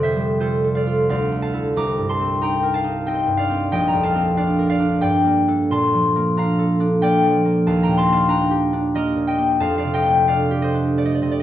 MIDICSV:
0, 0, Header, 1, 2, 480
1, 0, Start_track
1, 0, Tempo, 710059
1, 741, Tempo, 660793
1, 1221, Time_signature, 3, 2, 24, 8
1, 1701, Tempo, 650759
1, 3621, Tempo, 692841
1, 4101, Tempo, 646552
1, 6981, Tempo, 699301
1, 8241, End_track
2, 0, Start_track
2, 0, Title_t, "Harp"
2, 0, Program_c, 0, 46
2, 0, Note_on_c, 0, 41, 45
2, 0, Note_on_c, 0, 48, 37
2, 0, Note_on_c, 0, 55, 33
2, 0, Note_on_c, 0, 65, 41
2, 0, Note_on_c, 0, 67, 45
2, 0, Note_on_c, 0, 69, 48
2, 0, Note_on_c, 0, 70, 46
2, 0, Note_on_c, 0, 74, 62
2, 0, Note_on_c, 0, 77, 64
2, 0, Note_on_c, 0, 79, 63
2, 21, Note_on_c, 0, 76, 76
2, 28, Note_on_c, 0, 72, 58
2, 100, Note_off_c, 0, 55, 0
2, 108, Note_on_c, 0, 55, 42
2, 189, Note_off_c, 0, 74, 0
2, 262, Note_off_c, 0, 65, 0
2, 264, Note_off_c, 0, 72, 0
2, 269, Note_on_c, 0, 65, 35
2, 271, Note_off_c, 0, 69, 0
2, 274, Note_on_c, 0, 72, 59
2, 279, Note_on_c, 0, 69, 51
2, 424, Note_off_c, 0, 69, 0
2, 433, Note_on_c, 0, 69, 44
2, 499, Note_off_c, 0, 77, 0
2, 507, Note_on_c, 0, 77, 69
2, 519, Note_on_c, 0, 74, 57
2, 580, Note_off_c, 0, 65, 0
2, 588, Note_on_c, 0, 65, 44
2, 734, Note_off_c, 0, 77, 0
2, 738, Note_on_c, 0, 38, 51
2, 739, Note_off_c, 0, 74, 0
2, 745, Note_on_c, 0, 77, 70
2, 748, Note_on_c, 0, 74, 54
2, 757, Note_off_c, 0, 79, 0
2, 760, Note_off_c, 0, 48, 0
2, 762, Note_off_c, 0, 41, 0
2, 763, Note_off_c, 0, 67, 0
2, 765, Note_off_c, 0, 55, 0
2, 765, Note_off_c, 0, 72, 0
2, 766, Note_off_c, 0, 70, 0
2, 902, Note_on_c, 0, 57, 39
2, 978, Note_on_c, 0, 81, 72
2, 979, Note_off_c, 0, 77, 0
2, 987, Note_on_c, 0, 77, 52
2, 1054, Note_off_c, 0, 69, 0
2, 1058, Note_on_c, 0, 64, 40
2, 1063, Note_on_c, 0, 69, 43
2, 1225, Note_on_c, 0, 36, 49
2, 1230, Note_on_c, 0, 86, 82
2, 1231, Note_on_c, 0, 82, 65
2, 1240, Note_off_c, 0, 38, 0
2, 1240, Note_off_c, 0, 64, 0
2, 1240, Note_off_c, 0, 65, 0
2, 1240, Note_off_c, 0, 81, 0
2, 1241, Note_off_c, 0, 76, 0
2, 1242, Note_off_c, 0, 57, 0
2, 1242, Note_off_c, 0, 69, 0
2, 1244, Note_off_c, 0, 74, 0
2, 1244, Note_off_c, 0, 77, 0
2, 1383, Note_on_c, 0, 43, 33
2, 1465, Note_on_c, 0, 84, 67
2, 1472, Note_on_c, 0, 81, 58
2, 1541, Note_on_c, 0, 60, 46
2, 1633, Note_off_c, 0, 86, 0
2, 1691, Note_off_c, 0, 82, 0
2, 1699, Note_on_c, 0, 63, 42
2, 1701, Note_on_c, 0, 82, 72
2, 1708, Note_on_c, 0, 79, 58
2, 1857, Note_on_c, 0, 70, 49
2, 1929, Note_off_c, 0, 81, 0
2, 1938, Note_on_c, 0, 81, 78
2, 1948, Note_on_c, 0, 77, 64
2, 2003, Note_off_c, 0, 63, 0
2, 2012, Note_on_c, 0, 63, 45
2, 2167, Note_off_c, 0, 60, 0
2, 2171, Note_off_c, 0, 79, 0
2, 2176, Note_on_c, 0, 60, 44
2, 2180, Note_on_c, 0, 79, 71
2, 2188, Note_on_c, 0, 75, 58
2, 2321, Note_off_c, 0, 43, 0
2, 2330, Note_on_c, 0, 43, 39
2, 2342, Note_off_c, 0, 81, 0
2, 2397, Note_off_c, 0, 77, 0
2, 2406, Note_on_c, 0, 77, 74
2, 2417, Note_on_c, 0, 74, 58
2, 2487, Note_off_c, 0, 60, 0
2, 2496, Note_on_c, 0, 60, 42
2, 2651, Note_off_c, 0, 79, 0
2, 2657, Note_on_c, 0, 34, 53
2, 2661, Note_off_c, 0, 75, 0
2, 2663, Note_on_c, 0, 79, 82
2, 2670, Note_on_c, 0, 75, 59
2, 2673, Note_off_c, 0, 43, 0
2, 2673, Note_off_c, 0, 63, 0
2, 2678, Note_off_c, 0, 36, 0
2, 2768, Note_off_c, 0, 82, 0
2, 2777, Note_on_c, 0, 82, 65
2, 2781, Note_off_c, 0, 79, 0
2, 2790, Note_on_c, 0, 79, 52
2, 2820, Note_on_c, 0, 41, 37
2, 2823, Note_off_c, 0, 77, 0
2, 2893, Note_on_c, 0, 81, 89
2, 2901, Note_on_c, 0, 77, 68
2, 2971, Note_off_c, 0, 60, 0
2, 2980, Note_on_c, 0, 60, 52
2, 2986, Note_off_c, 0, 82, 0
2, 3135, Note_off_c, 0, 77, 0
2, 3141, Note_on_c, 0, 62, 50
2, 3142, Note_off_c, 0, 74, 0
2, 3144, Note_on_c, 0, 77, 76
2, 3150, Note_on_c, 0, 74, 51
2, 3291, Note_off_c, 0, 70, 0
2, 3300, Note_on_c, 0, 70, 52
2, 3373, Note_off_c, 0, 77, 0
2, 3379, Note_off_c, 0, 74, 0
2, 3382, Note_on_c, 0, 77, 86
2, 3388, Note_on_c, 0, 74, 59
2, 3447, Note_off_c, 0, 62, 0
2, 3456, Note_on_c, 0, 62, 55
2, 3606, Note_off_c, 0, 79, 0
2, 3613, Note_on_c, 0, 43, 57
2, 3615, Note_off_c, 0, 74, 0
2, 3616, Note_on_c, 0, 79, 91
2, 3624, Note_on_c, 0, 74, 56
2, 3638, Note_off_c, 0, 60, 0
2, 3639, Note_off_c, 0, 77, 0
2, 3640, Note_off_c, 0, 41, 0
2, 3640, Note_off_c, 0, 84, 0
2, 3641, Note_off_c, 0, 34, 0
2, 3646, Note_off_c, 0, 75, 0
2, 3777, Note_on_c, 0, 58, 41
2, 3930, Note_off_c, 0, 62, 0
2, 3938, Note_on_c, 0, 62, 42
2, 3941, Note_on_c, 0, 69, 51
2, 4097, Note_on_c, 0, 46, 55
2, 4099, Note_off_c, 0, 81, 0
2, 4099, Note_on_c, 0, 84, 91
2, 4107, Note_on_c, 0, 81, 67
2, 4118, Note_off_c, 0, 43, 0
2, 4118, Note_off_c, 0, 79, 0
2, 4269, Note_on_c, 0, 53, 37
2, 4422, Note_off_c, 0, 58, 0
2, 4431, Note_on_c, 0, 58, 50
2, 4580, Note_off_c, 0, 62, 0
2, 4587, Note_on_c, 0, 62, 47
2, 4593, Note_on_c, 0, 82, 72
2, 4603, Note_on_c, 0, 77, 53
2, 4740, Note_off_c, 0, 69, 0
2, 4749, Note_on_c, 0, 69, 55
2, 4898, Note_off_c, 0, 62, 0
2, 4907, Note_on_c, 0, 62, 48
2, 4914, Note_off_c, 0, 84, 0
2, 5062, Note_off_c, 0, 58, 0
2, 5069, Note_on_c, 0, 58, 47
2, 5070, Note_off_c, 0, 74, 0
2, 5070, Note_on_c, 0, 79, 90
2, 5079, Note_on_c, 0, 74, 70
2, 5218, Note_off_c, 0, 53, 0
2, 5227, Note_on_c, 0, 53, 43
2, 5382, Note_off_c, 0, 58, 0
2, 5391, Note_on_c, 0, 58, 44
2, 5542, Note_off_c, 0, 81, 0
2, 5547, Note_off_c, 0, 77, 0
2, 5550, Note_on_c, 0, 39, 50
2, 5552, Note_on_c, 0, 81, 78
2, 5556, Note_on_c, 0, 77, 53
2, 5563, Note_off_c, 0, 46, 0
2, 5566, Note_off_c, 0, 53, 0
2, 5569, Note_off_c, 0, 69, 0
2, 5663, Note_off_c, 0, 82, 0
2, 5667, Note_off_c, 0, 79, 0
2, 5672, Note_on_c, 0, 82, 74
2, 5676, Note_on_c, 0, 79, 57
2, 5707, Note_on_c, 0, 46, 43
2, 5749, Note_off_c, 0, 81, 0
2, 5779, Note_on_c, 0, 84, 92
2, 5789, Note_on_c, 0, 81, 70
2, 5849, Note_off_c, 0, 58, 0
2, 5858, Note_on_c, 0, 58, 46
2, 5867, Note_off_c, 0, 82, 0
2, 5882, Note_off_c, 0, 81, 0
2, 5891, Note_on_c, 0, 81, 76
2, 5894, Note_off_c, 0, 77, 0
2, 5903, Note_on_c, 0, 77, 56
2, 5980, Note_off_c, 0, 84, 0
2, 6003, Note_off_c, 0, 62, 0
2, 6009, Note_on_c, 0, 62, 50
2, 6012, Note_off_c, 0, 79, 0
2, 6012, Note_on_c, 0, 82, 79
2, 6021, Note_on_c, 0, 79, 52
2, 6095, Note_off_c, 0, 81, 0
2, 6159, Note_off_c, 0, 70, 0
2, 6175, Note_on_c, 0, 67, 49
2, 6331, Note_off_c, 0, 62, 0
2, 6340, Note_on_c, 0, 62, 49
2, 6496, Note_off_c, 0, 58, 0
2, 6502, Note_on_c, 0, 58, 50
2, 6507, Note_on_c, 0, 75, 79
2, 6511, Note_on_c, 0, 70, 64
2, 6652, Note_off_c, 0, 46, 0
2, 6661, Note_on_c, 0, 46, 45
2, 6735, Note_off_c, 0, 79, 0
2, 6742, Note_off_c, 0, 75, 0
2, 6744, Note_on_c, 0, 79, 72
2, 6751, Note_on_c, 0, 75, 53
2, 6817, Note_off_c, 0, 58, 0
2, 6826, Note_on_c, 0, 58, 42
2, 6985, Note_on_c, 0, 41, 51
2, 6988, Note_off_c, 0, 77, 0
2, 6988, Note_on_c, 0, 81, 81
2, 6996, Note_on_c, 0, 77, 64
2, 6997, Note_off_c, 0, 82, 0
2, 7002, Note_off_c, 0, 46, 0
2, 7003, Note_off_c, 0, 39, 0
2, 7003, Note_off_c, 0, 58, 0
2, 7006, Note_off_c, 0, 75, 0
2, 7007, Note_off_c, 0, 70, 0
2, 7100, Note_off_c, 0, 77, 0
2, 7109, Note_off_c, 0, 74, 0
2, 7109, Note_on_c, 0, 77, 58
2, 7117, Note_on_c, 0, 74, 47
2, 7146, Note_on_c, 0, 48, 33
2, 7209, Note_off_c, 0, 79, 0
2, 7217, Note_on_c, 0, 79, 82
2, 7222, Note_on_c, 0, 75, 67
2, 7293, Note_on_c, 0, 57, 43
2, 7300, Note_off_c, 0, 77, 0
2, 7441, Note_off_c, 0, 62, 0
2, 7447, Note_on_c, 0, 62, 40
2, 7449, Note_off_c, 0, 74, 0
2, 7452, Note_on_c, 0, 77, 66
2, 7457, Note_on_c, 0, 74, 57
2, 7600, Note_off_c, 0, 67, 0
2, 7609, Note_on_c, 0, 67, 50
2, 7678, Note_off_c, 0, 75, 0
2, 7687, Note_on_c, 0, 75, 71
2, 7699, Note_on_c, 0, 72, 59
2, 7762, Note_off_c, 0, 62, 0
2, 7770, Note_on_c, 0, 62, 45
2, 7922, Note_off_c, 0, 74, 0
2, 7924, Note_off_c, 0, 57, 0
2, 7930, Note_on_c, 0, 57, 41
2, 7933, Note_on_c, 0, 74, 59
2, 7976, Note_off_c, 0, 75, 0
2, 7984, Note_on_c, 0, 75, 57
2, 8025, Note_off_c, 0, 74, 0
2, 8048, Note_on_c, 0, 74, 64
2, 8081, Note_off_c, 0, 75, 0
2, 8087, Note_off_c, 0, 48, 0
2, 8096, Note_on_c, 0, 48, 41
2, 8102, Note_on_c, 0, 75, 51
2, 8143, Note_off_c, 0, 74, 0
2, 8163, Note_on_c, 0, 74, 58
2, 8201, Note_off_c, 0, 75, 0
2, 8220, Note_on_c, 0, 75, 51
2, 8241, Note_off_c, 0, 41, 0
2, 8241, Note_off_c, 0, 48, 0
2, 8241, Note_off_c, 0, 57, 0
2, 8241, Note_off_c, 0, 62, 0
2, 8241, Note_off_c, 0, 67, 0
2, 8241, Note_off_c, 0, 72, 0
2, 8241, Note_off_c, 0, 74, 0
2, 8241, Note_off_c, 0, 75, 0
2, 8241, Note_off_c, 0, 77, 0
2, 8241, Note_off_c, 0, 79, 0
2, 8241, Note_off_c, 0, 81, 0
2, 8241, End_track
0, 0, End_of_file